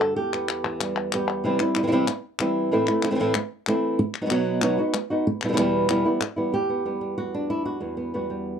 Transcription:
Already playing: nylon-string guitar G2 D3 F#4 A4
0.16 nylon-string guitar E2 G4
0.33 nylon-string guitar B3, clap
0.49 clap
0.64 nylon-string guitar E3
0.80 nylon-string guitar G3, clap
1.12 nylon-string guitar G3 B3 G4, clap
1.44 nylon-string guitar C3 E3 G3 C4 E4
1.59 nylon-string guitar G3 C4 E4, clap
1.75 nylon-string guitar G3 C4 E4, clap
1.83 nylon-string guitar E3 G3 C4 E4
1.87 nylon-string guitar E3 G3 C4 E4
1.92 nylon-string guitar C3 E3 G3 C4 E4
2.07 muted nylon-string guitar stroke, clap
2.39 nylon-string guitar E3 G3 C4 E4, clap
2.71 nylon-string guitar A2 E3 A3 C4 E4
2.87 nylon-string guitar A3 C4 E4, clap
3.03 nylon-string guitar E3 A3 C4 E4, clap
3.08 nylon-string guitar E3 A3 C4 E4
3.12 nylon-string guitar E3 A3 C4 E4
3.16 nylon-string guitar A2 E3 A3 E4
3.21 nylon-string guitar C4 E4
3.34 muted nylon-string guitar stroke, clap
3.67 nylon-string guitar E3 A3 C4 E4, clap
3.99 muted nylon-string guitar stroke
4.14 clap
4.21 nylon-string guitar F#3 B3 D#4 F#4
4.26 nylon-string guitar F#3 B3 D#4 F#4
4.30 nylon-string guitar B2 F#3 B3 D#4 F#4, clap
4.62 nylon-string guitar B2 F#3 B3 D#4 F#4, clap
4.78 nylon-string guitar B3 D#4 F#4
4.93 muted nylon-string guitar stroke, clap
5.10 nylon-string guitar B3 D#4 F#4
5.27 muted nylon-string guitar stroke
5.41 nylon-string guitar B2 E3 G3 B3 E4, clap
5.48 nylon-string guitar B2 E3 G3 B3 E4
5.53 nylon-string guitar B2 E3 G3 B3 E4
5.57 nylon-string guitar E2 B2 E3 G3 B3 E4, clap
5.89 nylon-string guitar E2 B2 E3 G3 B3 E4, clap
6.05 nylon-string guitar E3 G3 B3 E4
6.21 muted nylon-string guitar stroke, clap
6.36 nylon-string guitar E3 G3 B3 E4
6.52 nylon-string guitar E2 G4
6.69 nylon-string guitar B3
6.85 nylon-string guitar G3 B3
7.01 nylon-string guitar G3
7.18 nylon-string guitar F#4
7.34 nylon-string guitar D4
7.50 nylon-string guitar E4
7.65 nylon-string guitar F#4
7.80 nylon-string guitar E2 B3
7.97 nylon-string guitar B3
8.14 nylon-string guitar G3 B3 F#4
8.30 nylon-string guitar G3

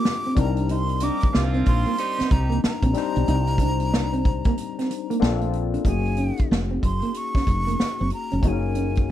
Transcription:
Already playing: tine electric piano A3 C4 D4 F4 G4, flute D6
0.05 snare
0.24 clean electric guitar C4, closed hi-hat
0.35 fretless electric bass C2, tine electric piano G3 C4 D4 D#4, kick, closed hi-hat
0.39 tine electric piano A#4, flute A#5, muted clean electric guitar stroke
0.57 clean electric guitar D4, closed hi-hat
0.69 clean electric guitar D#4, flute C6, closed hi-hat
0.89 closed hi-hat
1.00 horn section A#3 D#4 G4 A#4, clean electric guitar D4, flute D6, closed hi-hat
1.20 kick, closed hi-hat
1.25 muted fretless electric bass stroke
1.33 fretless electric bass C2, horn section F3 A#3 C4 F4, snare
1.54 clean electric guitar C4, closed hi-hat
1.66 fretless electric bass A#1, flute C6, muted clean electric guitar stroke, kick, closed hi-hat
1.86 clean electric guitar A#3, closed hi-hat
1.98 horn section G3 C4 D#4 G4, closed hi-hat
2.19 clean electric guitar C4, muted fretless electric bass stroke, snare, closed hi-hat
2.30 fretless electric bass C2, flute A#5, muted clean electric guitar stroke, kick, closed hi-hat
2.50 clean electric guitar A#3, closed hi-hat
2.64 flute A#5, muted fretless electric bass stroke, snare
2.82 fretless electric bass A#1, clean electric guitar C4, kick, closed hi-hat
2.93 tine electric piano G3 C4 D4 D#4, muted clean electric guitar stroke, snare, closed hi-hat
2.98 tine electric piano C5
3.16 fretless electric bass B1, clean electric guitar D4, closed hi-hat
3.28 fretless electric bass C2, clean electric guitar D#4, closed hi-hat
3.47 closed hi-hat
3.58 clean electric guitar D4, kick, closed hi-hat
3.80 closed hi-hat
3.94 snare
4.13 clean electric guitar C4, closed hi-hat
4.25 muted clean electric guitar stroke, kick, closed hi-hat
4.44 clean electric guitar A#3, kick, closed hi-hat
4.58 closed hi-hat
4.79 clean electric guitar C4, snare, closed hi-hat
4.90 muted clean electric guitar stroke, closed hi-hat
5.10 clean electric guitar A#3, closed hi-hat
5.20 fretless electric bass A#1, tine electric piano A#3 C4 D4 F4 A4, snare
5.41 clean electric guitar A3, closed hi-hat
5.53 muted clean electric guitar stroke, closed hi-hat
5.74 clean electric guitar D4, closed hi-hat
5.83 fretless electric bass F#1, tine electric piano A3 C#4 D#4, clean electric guitar D#4, kick, closed hi-hat
5.87 tine electric piano A#3 F#4 G#4, flute G#5
6.05 closed hi-hat
6.17 clean electric guitar C#4, closed hi-hat
6.37 muted fretless electric bass stroke, kick, closed hi-hat
6.51 fretless electric bass F1, snare
6.71 clean electric guitar C4
6.82 fretless electric bass F#1, flute C6, muted clean electric guitar stroke, kick, closed hi-hat
7.02 clean electric guitar A#3, closed hi-hat
7.14 flute C#6, closed hi-hat
7.35 clean electric guitar C#4, muted fretless electric bass stroke, kick, snare, closed hi-hat
7.47 fretless electric bass F1, muted clean electric guitar stroke, kick, closed hi-hat
7.67 clean electric guitar A#3, closed hi-hat
7.80 muted fretless electric bass stroke, snare
7.98 fretless electric bass F#1, clean electric guitar C4, closed hi-hat
8.10 flute A#5, muted clean electric guitar stroke, closed hi-hat
8.31 fretless electric bass F1, clean electric guitar C#4, closed hi-hat
8.41 fretless electric bass F#1, tine electric piano A#3 C#4 D#4 F#4, clean electric guitar D#4, kick, closed hi-hat
8.46 tine electric piano G#4, flute G#5
8.53 tine electric piano A#4
8.75 clean electric guitar C#4, closed hi-hat
8.95 kick, closed hi-hat

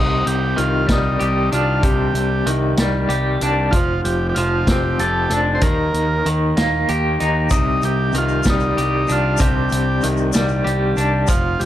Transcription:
Already playing: picked electric bass C2, clean electric guitar C3, transistor combo organ D#4
0.26 picked electric bass C2, transistor combo organ G4, closed hi-hat
0.56 picked electric bass C2, clean electric guitar D#3, transistor combo organ F4, closed hi-hat
0.87 picked electric bass C2, clean electric guitar G3, kick, snare, closed hi-hat
0.92 transistor combo organ D#4
1.19 picked electric bass C2, clean electric guitar G4, closed hi-hat
1.52 picked electric bass C2, clean electric guitar D4, transistor combo organ F4, closed hi-hat
1.83 picked electric bass C2, clean electric guitar C3, transistor combo organ G4, kick, closed hi-hat
2.14 picked electric bass C2, closed hi-hat
2.46 picked electric bass C2, clean electric guitar D#3, closed hi-hat
2.77 picked electric bass C2, clean electric guitar G3, snare, closed hi-hat
3.09 picked electric bass C2, clean electric guitar G4, closed hi-hat
3.41 picked electric bass C2, clean electric guitar D4, closed hi-hat
3.71 picked electric bass F1, clean electric guitar F3, transistor combo organ F4, kick, closed hi-hat
4.05 picked electric bass F1, transistor combo organ G4, closed hi-hat
4.29 transistor combo organ G4
4.35 picked electric bass F1, clean electric guitar F3, transistor combo organ F4, closed hi-hat
4.67 picked electric bass F1, clean electric guitar C4, transistor combo organ G4, kick, snare, closed hi-hat
4.99 picked electric bass F1, clean electric guitar A4, closed hi-hat
5.30 picked electric bass F1, clean electric guitar D4, transistor combo organ A4, closed hi-hat
5.55 transistor combo organ C5
5.61 picked electric bass D#2, clean electric guitar D#3, transistor combo organ A#4, kick, closed hi-hat
5.94 picked electric bass D#2, closed hi-hat
6.26 picked electric bass D#2, clean electric guitar D#3, closed hi-hat
6.57 picked electric bass D#2, clean electric guitar A#3, snare, closed hi-hat
6.88 picked electric bass D#2, clean electric guitar G4, closed hi-hat
7.20 picked electric bass D#2, clean electric guitar D#4, closed hi-hat
7.50 picked electric bass C2, clean electric guitar C3, transistor combo organ D#4, kick, closed hi-hat, shaker
7.82 picked electric bass C2, transistor combo organ G4, closed hi-hat, shaker
8.13 picked electric bass C2, clean electric guitar D#3, closed hi-hat, shaker
8.18 transistor combo organ F4
8.28 shaker
8.43 picked electric bass C2, clean electric guitar G3, kick, snare, closed hi-hat, shaker
8.50 transistor combo organ D#4
8.60 shaker
8.77 picked electric bass C2, clean electric guitar G4, closed hi-hat
9.07 picked electric bass C2, clean electric guitar D4, closed hi-hat, shaker
9.12 transistor combo organ F4
9.37 picked electric bass C2, clean electric guitar C3, kick, closed hi-hat, shaker
9.42 transistor combo organ G4
9.69 picked electric bass C2, closed hi-hat, shaker
10.01 picked electric bass C2, clean electric guitar D#3, closed hi-hat, shaker
10.17 shaker
10.33 picked electric bass C2, clean electric guitar G3, snare, closed hi-hat, shaker
10.48 shaker
10.64 picked electric bass C2, clean electric guitar G4, closed hi-hat
10.97 picked electric bass C2, clean electric guitar D4, closed hi-hat, shaker
11.27 picked electric bass F1, clean electric guitar F3, transistor combo organ F4, kick, closed hi-hat, shaker
11.59 picked electric bass F1, transistor combo organ G4, closed hi-hat, shaker

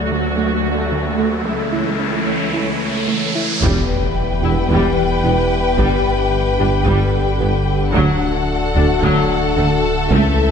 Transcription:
Already playing: cello section D2, analog synth pad F#3 A3 A4 D5, viola section A3 F#4, riser
0.11 synth arpeggio sound D3
0.38 synth arpeggio sound A3
0.92 synth arpeggio sound D3
1.19 synth arpeggio sound A3
1.45 cello section C#2, analog synth pad E3 C#5, synth arpeggio sound A3, viola section E4
1.73 synth arpeggio sound E4
1.99 synth arpeggio sound C#4
2.27 synth arpeggio sound A3
2.54 synth arpeggio sound E4
3.08 synth arpeggio sound A3
3.35 synth arpeggio sound E4
3.62 double bass section E1, tuba E1, sub bass E1, cello section E2, trombone section E3 G3, synth arpeggio sound E3, analog synth pad E3 B3 G4 B4, viola section G3, french horn section B3 G4, violin section B4 G5, taiko, impact
4.43 double bass section E1, tuba E1, cello section E2, synth arpeggio sound E4, viola section E4
4.70 double bass section E1, tuba E1, cello section E2, synth arpeggio sound E3, viola section G3, taiko
5.24 double bass section E1, tuba E1, cello section E2, viola section B3, synth arpeggio sound E4
5.78 double bass section G1, tuba G1, sub bass G1, cello section G2, analog synth pad D3 D4, synth arpeggio sound G3, viola section G3, taiko
6.59 double bass section G1, tuba G1, cello section G2, viola section D4, synth arpeggio sound G4
6.86 tuba G1, double bass section G1, cello section G2, trombone section D3, synth arpeggio sound G3, viola section G3, taiko
7.40 double bass section G1, tuba G1, cello section G2, viola section B3, synth arpeggio sound G4
7.94 sub bass D1, cello section D2, double bass section D2, tuba D2, synth arpeggio sound D3, viola section F#3, trombone section A3, french horn section D4 F#4, analog synth pad F#4 A4, violin section A4 F#5, taiko
8.76 tuba D2, double bass section D2, cello section D2, synth arpeggio sound D4, viola section D4
9.02 tuba D2, cello section D2, double bass section D2, synth arpeggio sound D3, viola section F#3, taiko
9.57 cello section D2, double bass section D2, tuba D2, viola section A3, synth arpeggio sound D4
10.11 double bass section C#2, sub bass C#2, cello section C#2, tuba C#2, trombone section E3, analog synth pad E3 C#4 E4, synth arpeggio sound A3, viola section A3, french horn section C#4 E4, violin section E5, taiko

